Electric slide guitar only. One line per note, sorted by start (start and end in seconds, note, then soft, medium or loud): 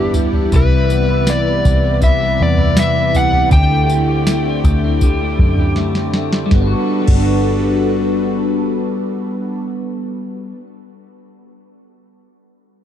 0.00 0.13 G4 medium
0.56 1.31 B4 medium
1.30 2.03 D5 medium
2.04 2.42 E5 loud
2.42 2.79 D5 medium
2.80 3.17 E5 loud
3.16 3.52 F#5 loud
3.53 5.73 G5 loud